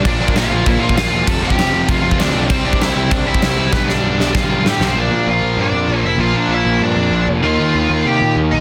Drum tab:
CC |x---x---x---x---|x---x---x---x---|x---x---x---x---|----------------|
SD |----o-------o---|----o-------o---|----o-------o---|o-o---o-o---o-o-|
BD |o--o----o--o----|o--o----o--o----|o--o----o--o----|o-------o-------|

CC |----------------|----------------|----------------|
SD |----------------|----------------|----------------|
BD |----------------|----------------|----------------|